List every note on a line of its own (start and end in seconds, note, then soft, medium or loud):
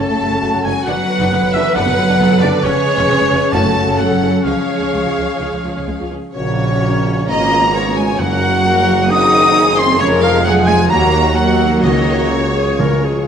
0.00 0.83 C#3 medium
0.00 2.60 F#3 medium
0.00 0.64 A3 medium
0.00 0.84 C#4 medium
0.00 0.40 A4 medium
0.00 0.83 A4 medium
0.00 0.84 A4 medium
0.00 0.64 A5 loud
0.00 0.67 A5 medium
0.09 0.14 F#1 medium
0.09 0.14 A3 medium
0.21 0.25 F#1 medium
0.21 0.26 F#1 medium
0.21 0.26 F#3 medium
0.31 0.36 F#1 medium
0.31 0.36 C#4 medium
0.42 0.47 F#1 medium
0.42 0.48 F#1 medium
0.42 0.47 A3 medium
0.42 1.30 F#4 medium
0.54 0.58 F#1 medium
0.54 0.58 F#3 medium
0.65 0.69 F#1 medium
0.65 0.70 F#1 loud
0.65 0.74 G#3 medium
0.65 0.69 C#4 medium
0.65 0.87 G#5 loud
0.65 0.75 G#5 medium
0.65 0.86 G#5 medium
0.86 0.92 F#1 medium
0.86 0.92 F#1 loud
0.86 2.61 D3 medium
0.86 1.53 F#3 loud
0.86 2.60 B3 medium
0.86 0.91 D4 loud
0.86 3.49 B4 medium
0.86 1.56 F#5 loud
0.86 1.54 F#5 loud
0.86 1.56 F#5 loud
1.20 1.25 F#1 medium
1.20 1.25 D4 loud
1.31 1.36 F#1 medium
1.31 1.37 F#1 medium
1.31 1.36 B3 medium
1.31 2.18 B4 medium
1.43 1.47 F#1 medium
1.43 1.47 F#3 medium
1.53 1.58 F#1 loud
1.53 1.59 F#1 loud
1.53 1.76 E3 loud
1.53 1.59 D4 loud
1.53 1.76 E5 loud
1.53 1.77 E5 loud
1.75 1.80 F#1 loud
1.75 1.81 F#1 loud
1.75 2.41 F#3 loud
1.75 1.80 D4 loud
1.75 2.41 F#5 loud
1.86 1.92 F#1 medium
1.86 1.91 B3 medium
1.97 2.03 F#1 medium
1.97 2.02 F#3 medium
2.08 2.14 F#1 loud
2.08 2.13 D4 loud
2.20 2.25 F#1 medium
2.20 2.24 B3 medium
2.20 2.64 A4 medium
2.31 2.36 F#1 medium
2.31 2.35 F#3 medium
2.41 2.47 F#1 loud
2.41 2.64 D3 loud
2.41 2.46 D4 loud
2.41 2.64 D5 loud
2.41 2.48 D5 medium
2.41 2.65 D5 loud
2.63 2.69 F1 loud
2.63 3.51 C#3 loud
2.63 6.11 C#3 medium
2.63 3.54 G#3 medium
2.63 6.07 C#4 loud
2.63 2.69 C#4 loud
2.63 3.52 G#4 loud
2.63 3.54 C#5 loud
2.63 3.53 C#5 loud
2.63 3.55 C#5 loud
2.98 3.02 F1 loud
2.98 3.02 C#4 loud
3.09 3.13 F1 medium
3.09 3.13 B3 medium
3.20 3.25 F1 medium
3.20 3.24 G#3 medium
3.31 3.36 F1 loud
3.31 3.36 C#4 medium
3.53 3.58 F#1 loud
3.53 3.58 F#1 medium
3.53 4.18 F#2 loud
3.53 4.44 F#3 medium
3.53 3.98 A3 loud
3.53 3.59 C#4 medium
3.53 3.98 F#4 medium
3.53 4.46 A4 medium
3.53 3.98 A5 loud
3.53 4.01 A5 loud
3.64 3.69 F#1 medium
3.64 3.69 A3 medium
3.76 3.80 F#1 medium
3.76 3.81 F#1 medium
3.76 3.80 F#3 medium
3.87 3.92 F#1 loud
3.87 3.92 C#4 medium
3.98 4.04 F#1 medium
3.98 4.45 F#3 medium
3.98 4.04 A3 medium
3.98 4.45 A4 medium
3.98 4.46 F#5 medium
3.98 4.45 F#5 loud
3.98 4.46 F#5 medium
4.10 4.15 F#1 medium
4.10 4.15 F#3 medium
4.22 4.27 F#1 medium
4.22 4.27 C#4 medium
4.44 4.50 C#2 medium
4.44 6.08 F3 medium
4.44 6.07 G#3 medium
4.44 4.50 C#4 medium
4.44 6.11 G#4 medium
4.44 6.08 G#4 medium
4.44 6.08 C#5 medium
4.44 6.10 F5 medium
4.44 6.07 F5 medium
4.44 6.08 F5 medium
4.80 4.85 C#2 medium
4.80 4.86 C#4 medium
4.93 4.97 C#2 medium
4.93 4.98 G#3 medium
5.04 5.09 C#2 medium
5.04 5.09 F3 medium
5.16 5.21 C#2 medium
5.16 5.22 C#4 medium
5.40 5.45 C#2 medium
5.40 5.45 C#4 medium
5.52 5.57 C#2 medium
5.52 5.57 G#3 medium
5.64 5.69 C#2 medium
5.64 5.69 F3 medium
5.76 5.81 C#2 medium
5.76 5.80 C#4 medium
5.87 5.92 C#2 medium
5.87 5.93 C#2 medium
5.87 5.92 G#3 medium
5.99 6.05 C#2 medium
5.99 6.04 F3 medium
6.11 6.16 C#2 medium
6.11 6.16 C#4 medium
6.34 7.25 A#1 medium
6.34 7.30 A#1 medium
6.34 9.08 C#3 medium
6.34 7.25 C#3 medium
6.34 7.25 A#3 medium
6.34 9.07 C#4 medium
6.34 8.16 C#4 medium
6.34 7.24 F#4 medium
6.34 7.25 F#4 medium
6.34 7.25 C#5 medium
6.34 7.25 C#5 loud
6.34 7.25 C#5 medium
7.28 8.19 G#1 medium
7.28 8.20 G#1 medium
7.28 7.96 A#3 loud
7.28 8.20 B3 medium
7.28 8.15 F4 medium
7.28 8.20 F4 medium
7.28 7.71 D#5 loud
7.28 7.95 A#5 loud
7.28 7.96 A#5 loud
7.75 8.20 C#5 medium
7.96 8.06 G#3 medium
7.96 8.19 G#5 loud
7.96 8.21 G#5 medium
8.19 9.98 F#1 loud
8.19 9.98 F#2 medium
8.19 8.84 F#2 loud
8.19 9.10 F#3 loud
8.19 9.07 A#3 medium
8.19 9.98 A#3 medium
8.19 9.09 F#4 medium
8.19 9.07 F#4 medium
8.19 8.64 A#4 loud
8.19 9.11 F#5 loud
8.19 9.10 F#5 loud
8.19 9.13 F#5 loud
8.65 9.11 A#4 loud
9.10 9.99 D#3 medium
9.10 9.97 C4 medium
9.10 10.02 C4 medium
9.10 9.79 D#4 loud
9.10 9.56 F#4 loud
9.10 10.86 G#4 medium
9.10 10.01 G#4 loud
9.10 9.79 D#6 loud
9.10 9.81 D#6 loud
9.10 9.80 D#6 loud
9.57 10.02 G#4 medium
9.78 10.01 C4 loud
9.78 10.01 C6 loud
10.00 10.91 F1 loud
10.00 10.88 F2 loud
10.00 10.09 C#3 loud
10.00 10.90 F3 loud
10.00 10.86 G#3 medium
10.00 10.88 G#3 loud
10.00 10.90 G#3 medium
10.00 10.88 F4 loud
10.00 10.45 A#4 loud
10.00 10.08 C#5 loud
10.00 10.23 C#5 loud
10.21 10.45 F3 loud
10.21 10.45 F5 loud
10.21 10.44 F5 loud
10.21 10.46 F5 loud
10.44 10.53 F#3 loud
10.44 10.89 G#4 loud
10.44 10.68 F#5 loud
10.44 10.53 F#5 loud
10.44 10.69 F#5 loud
10.66 10.76 G#3 loud
10.66 10.91 G#5 loud
10.66 10.89 G#5 loud
10.66 10.90 G#5 loud
10.89 11.83 D#2 medium
10.89 11.83 D#2 loud
10.89 11.83 D#3 medium
10.89 12.63 F#3 loud
10.89 12.75 A#3 loud
10.89 11.35 A#3 loud
10.89 12.80 A#3 loud
10.89 12.76 F#4 loud
10.89 12.80 F#4 medium
10.89 11.35 F#4 loud
10.89 11.37 A#5 loud
10.89 11.35 A#5 loud
11.35 11.83 F#3 loud
11.35 11.83 A#4 medium
11.35 11.83 F#5 loud
11.35 11.85 F#5 loud
11.35 11.83 F#5 loud
11.83 13.28 C#2 medium
11.83 13.28 C#3 medium
11.83 12.52 C#3 loud
11.83 12.32 D#3 loud
11.83 13.28 C#5 medium
11.83 12.31 D#5 medium
11.83 12.34 D#5 loud
12.31 13.28 C#3 medium
12.31 12.57 F#4 medium
12.31 13.28 C#5 medium
12.55 12.81 G#4 medium
12.79 13.28 C#3 loud
12.79 13.28 F3 medium
12.79 13.28 G#3 medium
12.79 13.28 F4 medium
12.79 13.28 G#4 medium
12.79 13.06 A#4 loud
13.04 13.27 G#4 medium